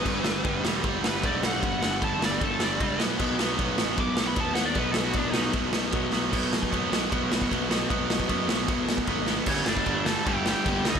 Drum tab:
CC |x---------------|----------------|x---------------|----------------|
RD |----x---x---x---|x---x---x---x---|----x---x---x---|x---x---x---x---|
SD |--o---o---o---o-|--o---o---o---o-|--o---o---o---o-|--o---o---o---o-|
BD |o---o---o---o---|o---o---o---o---|o---o---o---o---|o---o---o---o---|

CC |x---------------|----------------|x---x---x---x---|
RD |----x---x---x---|x---x---x---x---|----------------|
SD |--o---o---o---o-|--o---o---o---o-|--o---o---o---o-|
BD |o--oo---o--oo---|o--oo---o--oo---|o--oo---o---o--o|